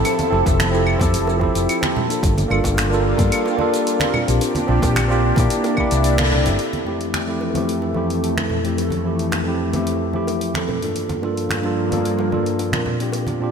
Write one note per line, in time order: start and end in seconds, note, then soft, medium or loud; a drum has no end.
0.00 2.19 F3 medium
0.00 0.28 C4 medium
0.00 0.29 E4 medium
0.00 2.19 E4 medium
0.00 0.30 G4 medium
0.00 0.30 A4 medium
0.00 2.19 A4 medium
0.05 open hi-hat medium
0.05 high bongo soft
0.05 claves medium
0.05 shaker medium
0.19 open hi-hat soft
0.19 high conga medium
0.19 shaker soft
0.30 0.42 F1 loud
0.30 0.69 C4 medium
0.30 0.70 E4 medium
0.30 0.70 G4 medium
0.30 0.71 A4 loud
0.30 high bongo soft
0.46 0.94 F1 loud
0.46 kick loud
0.46 open hi-hat soft
0.46 high bongo medium
0.46 low conga medium
0.46 shaker medium
0.60 finger snap medium
0.60 open hi-hat medium
0.60 high conga medium
0.60 shaker medium
0.71 0.96 C4 medium
0.71 0.97 E4 medium
0.71 0.98 G4 medium
0.71 shaker soft
0.76 0.99 A4 medium
0.87 claves medium
0.99 1.16 F2 medium
0.99 1.37 C4 loud
0.99 1.38 E4 medium
0.99 1.39 G4 medium
0.99 1.39 A4 loud
0.99 kick medium
0.99 open hi-hat soft
0.99 high conga medium
0.99 shaker medium
1.14 1.49 F1 medium
1.14 open hi-hat medium
1.14 shaker medium
1.27 high bongo medium
1.27 shaker soft
1.39 1.78 C4 medium
1.39 1.79 E4 medium
1.39 1.79 G4 medium
1.39 1.80 A4 loud
1.39 kick medium
1.39 high conga medium
1.55 1.65 F1 medium
1.55 open hi-hat soft
1.55 shaker medium
1.69 open hi-hat medium
1.69 claves medium
1.69 shaker medium
1.81 2.05 C4 medium
1.81 2.05 E4 medium
1.81 2.06 G4 medium
1.81 2.07 C5 medium
1.81 finger snap medium
1.81 open hi-hat soft
1.81 high conga medium
1.81 shaker soft
1.97 low conga loud
2.08 2.46 A#3 medium
2.08 2.47 D4 medium
2.08 2.48 F4 medium
2.08 2.48 A4 medium
2.08 open hi-hat soft
2.08 shaker medium
2.22 2.43 G1 loud
2.22 4.12 G3 medium
2.22 4.12 A#3 medium
2.22 4.12 F4 medium
2.22 kick loud
2.22 open hi-hat medium
2.22 high bongo medium
2.22 shaker medium
2.38 open hi-hat soft
2.38 high conga medium
2.38 shaker soft
2.48 2.60 G1 loud
2.48 2.87 A#3 medium
2.48 2.88 D4 medium
2.48 2.89 F4 medium
2.48 high bongo soft
2.48 claves medium
2.53 2.89 A4 loud
2.64 3.13 G1 loud
2.64 kick medium
2.64 open hi-hat soft
2.64 high bongo medium
2.64 shaker medium
2.77 finger snap medium
2.77 open hi-hat medium
2.77 high conga medium
2.77 shaker soft
2.90 3.15 A#3 medium
2.90 3.15 D4 medium
2.90 3.16 F4 medium
2.90 shaker soft
2.94 3.17 A4 loud
3.17 3.29 G2 loud
3.17 3.55 A#3 medium
3.17 3.56 D4 medium
3.17 3.56 F4 medium
3.17 3.57 A4 loud
3.17 kick loud
3.17 open hi-hat soft
3.17 high conga medium
3.17 shaker medium
3.32 open hi-hat medium
3.32 claves medium
3.32 shaker medium
3.46 high bongo medium
3.46 shaker soft
3.57 3.96 A#3 medium
3.57 3.97 D4 medium
3.57 3.98 F4 medium
3.57 high conga medium
3.61 3.98 A4 loud
3.74 open hi-hat soft
3.74 shaker medium
3.87 open hi-hat medium
3.87 shaker medium
3.99 4.23 C4 medium
3.99 4.23 D4 medium
3.99 4.24 F4 medium
3.99 4.25 A#4 medium
3.99 finger snap medium
3.99 open hi-hat soft
3.99 high conga medium
3.99 shaker soft
4.13 6.57 A#3 medium
4.13 5.49 D4 medium
4.13 5.49 G4 medium
4.13 low conga medium
4.13 claves medium
4.26 4.38 A#1 medium
4.26 4.65 C4 medium
4.26 4.65 D4 medium
4.26 4.66 F4 medium
4.26 4.66 G4 medium
4.26 open hi-hat soft
4.26 shaker medium
4.41 open hi-hat medium
4.41 high bongo soft
4.41 shaker medium
4.55 open hi-hat soft
4.55 high conga medium
4.55 shaker soft
4.67 4.79 A#1 loud
4.67 5.06 C4 medium
4.67 5.06 D4 medium
4.67 5.07 F4 medium
4.67 5.08 G4 medium
4.67 high bongo soft
4.82 5.31 A#1 loud
4.82 kick loud
4.82 open hi-hat soft
4.82 high bongo medium
4.82 low conga loud
4.82 shaker medium
4.96 finger snap medium
4.96 open hi-hat medium
4.96 high conga medium
4.96 claves medium
4.96 shaker medium
5.08 5.33 C4 medium
5.08 5.33 D4 medium
5.08 5.34 F4 medium
5.08 5.35 G4 loud
5.08 shaker soft
5.36 5.47 A#2 medium
5.36 5.74 A#3 loud
5.36 5.74 D4 medium
5.36 5.75 E4 medium
5.36 kick loud
5.36 open hi-hat medium
5.36 high conga loud
5.36 shaker medium
5.40 5.76 G4 loud
5.50 6.59 C3 medium
5.50 6.58 D4 medium
5.50 6.59 E4 medium
5.50 open hi-hat medium
5.50 shaker medium
5.64 open hi-hat soft
5.64 high bongo medium
5.64 shaker soft
5.76 6.15 A#3 medium
5.76 6.16 D4 medium
5.76 6.16 E4 medium
5.76 6.17 G4 loud
5.76 kick medium
5.76 high conga medium
5.76 claves medium
5.91 6.48 C2 loud
5.91 open hi-hat soft
5.91 shaker medium
6.04 open hi-hat medium
6.04 shaker medium
6.18 6.41 A#3 medium
6.18 6.42 D4 medium
6.18 6.43 E4 medium
6.18 finger snap medium
6.18 open hi-hat soft
6.18 high conga medium
6.18 shaker soft
6.22 6.43 A4 medium
6.32 low conga medium
6.44 6.56 G1 medium
6.44 6.83 C4 medium
6.44 6.83 E4 medium
6.44 6.84 G4 medium
6.44 6.85 A4 medium
6.44 open hi-hat soft
6.44 shaker medium
6.59 10.92 F2 medium
6.59 10.92 E3 medium
6.59 10.92 A3 medium
6.59 open hi-hat soft
6.73 open hi-hat soft
6.73 high conga medium
6.85 7.24 F2 medium
6.85 7.24 A3 medium
6.85 7.25 C4 medium
6.85 7.25 E4 medium
6.85 high bongo soft
6.89 7.26 G4 medium
7.01 open hi-hat soft
7.14 finger snap medium
7.14 open hi-hat soft
7.14 high conga medium
7.26 7.51 F2 medium
7.26 7.52 A3 medium
7.26 7.52 C4 medium
7.26 7.52 E4 medium
7.26 7.53 G4 medium
7.41 high bongo medium
7.53 7.92 F2 medium
7.53 7.92 A3 medium
7.53 7.93 C4 medium
7.53 7.93 E4 medium
7.53 open hi-hat soft
7.53 high conga medium
7.57 7.94 G4 medium
7.69 open hi-hat medium
7.82 high bongo soft
7.93 8.33 F2 medium
7.93 8.33 A3 medium
7.93 8.33 C4 medium
7.93 8.34 E4 medium
7.93 8.34 G4 medium
7.93 high conga medium
8.10 open hi-hat soft
8.24 open hi-hat soft
8.35 8.59 F2 medium
8.35 8.60 A3 medium
8.35 8.60 C4 medium
8.35 8.61 E4 medium
8.35 8.61 A4 medium
8.35 finger snap medium
8.35 open hi-hat soft
8.35 high bongo medium
8.35 high conga medium
8.50 low conga medium
8.62 9.01 F2 medium
8.62 9.01 A3 medium
8.62 9.02 C4 medium
8.62 9.02 E4 medium
8.62 open hi-hat soft
8.66 9.03 G4 medium
8.78 open hi-hat medium
8.78 high bongo soft
8.90 open hi-hat soft
8.90 high conga medium
9.03 9.42 F2 medium
9.03 9.42 A3 medium
9.03 9.43 C4 medium
9.03 9.43 E4 medium
9.07 9.44 G4 medium
9.19 open hi-hat soft
9.32 finger snap medium
9.32 open hi-hat soft
9.32 high bongo medium
9.32 high conga medium
9.45 9.69 F2 medium
9.45 9.70 A3 medium
9.45 9.70 C4 medium
9.45 9.71 E4 medium
9.45 9.71 G4 medium
9.72 10.10 F2 medium
9.72 10.11 A3 medium
9.72 10.11 C4 medium
9.72 10.12 E4 medium
9.72 open hi-hat soft
9.72 high bongo soft
9.72 high conga medium
9.76 10.12 G4 medium
9.87 open hi-hat medium
10.12 10.51 F2 medium
10.12 10.51 A3 medium
10.12 10.52 C4 medium
10.12 10.52 E4 medium
10.12 high conga medium
10.16 10.53 G4 medium
10.27 open hi-hat soft
10.27 high bongo medium
10.41 open hi-hat soft
10.53 10.77 F2 medium
10.53 10.78 A3 medium
10.53 10.78 C4 medium
10.53 10.79 E4 medium
10.53 10.79 A4 medium
10.53 finger snap medium
10.53 open hi-hat soft
10.53 high conga medium
10.69 high bongo medium
10.69 low conga medium
10.80 11.19 G2 medium
10.80 11.19 A#3 medium
10.80 11.20 D4 medium
10.80 11.20 F4 medium
10.80 11.21 A4 medium
10.80 open hi-hat soft
10.96 12.85 G2 medium
10.96 12.85 F3 medium
10.96 12.85 A#3 medium
10.96 open hi-hat soft
11.09 open hi-hat soft
11.09 high conga medium
11.21 11.60 G2 medium
11.21 11.61 A#3 medium
11.21 11.61 D4 medium
11.21 11.62 F4 medium
11.21 high bongo medium
11.25 11.62 A4 medium
11.37 open hi-hat soft
11.49 finger snap medium
11.49 open hi-hat soft
11.49 high conga medium
11.62 11.87 G2 medium
11.62 11.88 A#3 medium
11.62 11.88 D4 medium
11.62 11.89 F4 medium
11.62 11.89 A4 medium
11.62 high bongo soft
11.89 12.28 G2 medium
11.89 12.28 A#3 medium
11.89 12.29 D4 medium
11.89 12.29 F4 medium
11.89 open hi-hat soft
11.89 high conga medium
11.93 12.30 A4 medium
12.05 open hi-hat soft
12.19 high bongo medium
12.30 12.69 G2 medium
12.30 12.70 A#3 medium
12.30 12.70 D4 medium
12.30 12.70 F4 medium
12.30 12.71 A4 medium
12.30 high conga medium
12.46 open hi-hat soft
12.59 open hi-hat soft
12.59 high bongo soft
12.71 12.95 A#2 medium
12.71 12.96 C4 medium
12.71 12.96 D4 medium
12.71 12.97 F4 medium
12.71 finger snap medium
12.71 open hi-hat soft
12.71 high conga medium
12.75 12.98 A#4 medium
12.86 13.51 A#2 medium
12.86 13.51 G3 medium
12.86 13.51 D4 medium
12.86 low conga medium
12.99 13.37 A#2 medium
12.99 13.38 C4 medium
12.99 13.38 D4 medium
12.99 13.39 F4 medium
12.99 13.39 G4 medium
12.99 open hi-hat soft
13.12 open hi-hat soft
13.12 high bongo medium
13.27 open hi-hat soft
13.27 high conga medium
13.39 13.51 A#2 medium
13.39 13.51 C4 medium
13.39 13.51 D4 medium
13.39 13.51 F4 medium
13.44 13.51 G4 medium